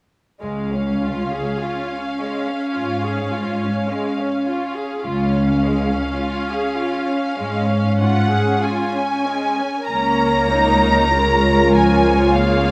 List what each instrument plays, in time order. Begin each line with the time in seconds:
0.43 cello section C#2, violin section G#3 F5, viola section C#4
0.73 violin section C#4
1.04 violin section F4
1.34 violin section G#4
1.64 violin section F4
1.92 violin section C#4
2.22 violin section G#3
2.49 violin section C#4
2.76 cello section G#2, violin section F4
3.05 violin section G#4
3.33 violin section F4
3.62 violin section C#4
3.90 violin section G#3
4.19 violin section C#4
4.47 violin section F4
4.77 violin section G#4
5.06 cello section C#2, viola section C#4, violin section F4 F5
5.34 violin section C#4
5.65 violin section G#3
5.92 violin section C#4
6.21 violin section F4
6.51 violin section G#4
6.80 violin section F4
7.09 violin section C#4
7.39 cello section G#2, violin section G#3
7.69 violin section C#4
8.00 violin section F4 F#5
8.32 violin section G#4
8.63 violin section F4 G#5
8.95 violin section C#4
9.27 violin section G#3
9.60 violin section C#4
9.90 cello section C#2, double bass section C#2, viola section A#3 C#4, violin section A#4 C#5 A#5
10.53 viola section D#4
11.13 viola section G#3 F4, violin section C#5
11.73 viola section F3, violin section G#5
12.33 viola section A#3, violin section G#4 F5